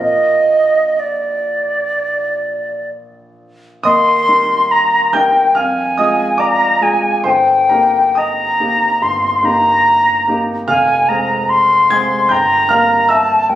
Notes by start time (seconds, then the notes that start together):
Already playing: A#1
0.00 F4 A#4 D#5
0.99 D5
3.83 D#2 D#5 C6 D#6
4.28 G3 D#4 A#4
4.71 A#5
5.13 G3 D#4 A#4 G5 G6
5.55 F2 F5 G#5 F6
5.98 G#3 F4 G#4 D#5 D#6
6.38 D5 A#5 D6
6.81 G#3 F4 G#4 G#5
7.24 G1 C5 G5 C6
7.69 A#3 D#4 G4 A#4 A#5
8.15 D#5 A#5 D#6
8.60 A#3 D#4 G4
9.02 G1 C6
9.43 A#3 D#4 G4 A#5
10.28 A#3 D#4 G4
10.68 F1 F5 G#5 F6
11.09 G#3 C4 G#4 A#5
11.49 C6
11.90 G#3 C4 G#4 G#5 G#6
12.29 G1 G5 A#5 G6
12.69 G3 A#3 A#4 F5 F6
13.09 E5 A5 E6
13.49 G3 A#3 A#4 G5